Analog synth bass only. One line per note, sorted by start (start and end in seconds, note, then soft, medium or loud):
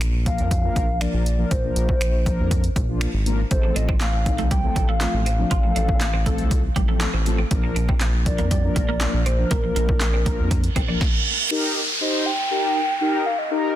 0.00 0.40 A#1 loud
0.39 0.70 F2 medium
0.76 1.07 A#1 medium
1.14 1.45 A#1 loud
1.51 1.72 A#1 loud
1.76 2.40 A#1 loud
2.39 2.70 F2 medium
2.76 3.07 A#1 medium
3.13 3.45 G#1 loud
3.51 3.72 A1 loud
3.76 4.40 A1 loud
4.38 4.70 C2 medium
4.76 5.07 A1 medium
5.14 5.45 A1 loud
5.51 5.72 A1 loud
5.76 6.40 A1 loud
6.39 6.70 C2 medium
6.76 7.07 A1 medium
7.14 7.45 A1 loud
7.51 7.72 A#1 loud
7.76 8.40 A#1 loud
8.39 8.70 F2 medium
8.76 9.07 A#1 medium
9.14 9.45 A#1 loud
9.51 9.72 A#1 loud
9.76 10.40 A#1 loud
10.39 10.70 F2 medium
10.76 10.97 A#1 medium